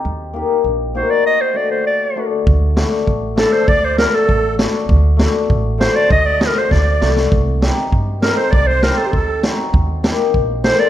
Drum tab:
SD |--------|--------|--oo--o-|--o---o-|
BD |--------|--------|o---o---|o---o---|

SD |--o---o-|--o-o-oo|--o---o-|--o---o-|
BD |o---o---|o---o---|o---o---|o---o---|

SD |--o---o-|
BD |o---o---|